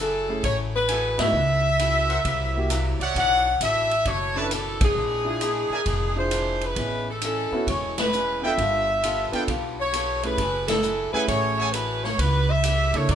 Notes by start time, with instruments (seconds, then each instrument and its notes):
Already playing: upright bass F#1
0.00 steel-string acoustic guitar F#3 A3 E4 G#4, saxophone section A4
0.28 grand piano A3 C#4 E4 G#4
0.43 upright bass A1, steel-string acoustic guitar F#3 A3 E4 G#4, saxophone section C#5, kick, ride
0.75 saxophone section B4
0.87 steel-string acoustic guitar F#3 A3, trumpet section A4 E5 F#5 G#5, hi-hat pedal, ride
0.92 steel-string acoustic guitar E4 G#4
1.18 upright bass G#2, grand piano B3 D#4 E4 F#4, saxophone section E5, snare, ride
1.33 upright bass C#2, steel-string acoustic guitar C#3 B3
1.37 steel-string acoustic guitar E4 F#4
1.79 steel-string acoustic guitar C#3 B3 E4 F#4, hi-hat pedal, ride
2.09 trumpet section A#4 C5 E5 F#5, ride
2.24 upright bass C2, steel-string acoustic guitar C3 F#3 A#3 E4, kick, ride
2.55 grand piano A#3 E4 F#4 G4
2.70 steel-string acoustic guitar C3 F#3 A#3 E4, hi-hat pedal, ride
3.00 upright bass C2, trumpet section C#5 D5 E5 F#5, ride
3.13 upright bass B1, steel-string acoustic guitar B2 A3 D4 E4, kick, ride
3.18 saxophone section F#5
3.61 upright bass A1, steel-string acoustic guitar B2 A3 D4 E4, saxophone section E5, hi-hat pedal, ride
3.91 ride
4.05 upright bass F#1, steel-string acoustic guitar B2 A3 D4, saxophone section C#5, kick, ride
4.10 steel-string acoustic guitar E4
4.35 grand piano C#4 D4 E4 A4, saxophone section B4, trumpet section C#5 D5 E5 A5
4.51 steel-string acoustic guitar B2 A3 D4 E4, saxophone section A4, hi-hat pedal, ride
4.81 saxophone section G#4, kick, ride
4.95 upright bass A#1, steel-string acoustic guitar A#2 G#3 D4 E4
5.25 grand piano D4 E4 F4 G#4
5.40 steel-string acoustic guitar A#2 G#3 D4 E4, hi-hat pedal, ride
5.70 trumpet section A#4 D5 E5 G#5, muted upright bass stroke
5.84 upright bass F1, steel-string acoustic guitar A#2 G#3 D4, kick, ride
5.89 steel-string acoustic guitar E4
6.16 grand piano D4 E4 F4 G#4, saxophone section C5
6.31 steel-string acoustic guitar A#2 G#3 D4 E4, hi-hat pedal, ride
6.61 ride
6.65 saxophone section B4
6.76 upright bass A1, steel-string acoustic guitar A2 G#3 C#4, grand piano B3 C#4 E4 G#4, kick, ride
6.80 steel-string acoustic guitar E4
7.10 saxophone section A4
7.21 steel-string acoustic guitar A2 G#3 C#4 E4, saxophone section A4, hi-hat pedal, ride
7.52 grand piano B3 C#4 E4 F#4, muted upright bass stroke
7.67 upright bass E1, steel-string acoustic guitar A2 G#3 C#4 E4, saxophone section C#5, kick, ride
7.98 saxophone section B4, snare, ride
8.12 steel-string acoustic guitar A2 G#3 C#4 E4, hi-hat pedal
8.42 grand piano B3 D4 F4 A4, trumpet section A4 B4 F5 G5, saxophone section E5
8.57 upright bass G1, steel-string acoustic guitar G3 B3 F4 A4, kick, ride
9.03 steel-string acoustic guitar G3 B3 F4 A4, hi-hat pedal, ride
9.32 grand piano B3 D4 F4 A4, trumpet section A4 B4 F5 G5, muted upright bass stroke, ride
9.48 upright bass B1, steel-string acoustic guitar G3 B3 F4 A4, kick, ride
9.80 saxophone section C#5
9.92 steel-string acoustic guitar G3 B3 F4 A4, hi-hat pedal, ride
10.23 grand piano A3 C#4 E4 G#4, saxophone section B4, ride
10.38 upright bass F#1, steel-string acoustic guitar F#3 A3 E4 G#4, kick, ride
10.68 saxophone section A4, snare, ride
10.83 steel-string acoustic guitar F#3 A3 E4 G#4, hi-hat pedal
11.12 grand piano A3 C#4 E4 G#4, trumpet section A4 E5 F#5 G#5, saxophone section B4, muted upright bass stroke
11.28 upright bass A1, steel-string acoustic guitar F#3 A3 E4 G#4, saxophone section C#5, kick, ride
11.58 trumpet section A4 E5 F#5 G#5
11.73 steel-string acoustic guitar F#3 A3 E4 G#4, saxophone section B4, hi-hat pedal, ride
12.04 saxophone section C#5, snare
12.18 upright bass C#2, steel-string acoustic guitar C#3 B3 E4, saxophone section B4, kick, ride
12.22 steel-string acoustic guitar G4
12.51 saxophone section E5
12.62 steel-string acoustic guitar C#3 B3 E4 G4, hi-hat pedal, ride
12.93 upright bass C#3, grand piano A#3 D4 E4 A4, saxophone section C#5, ride
13.07 upright bass F#2, steel-string acoustic guitar F#3 D4 E4 A#4, saxophone section D5, kick, ride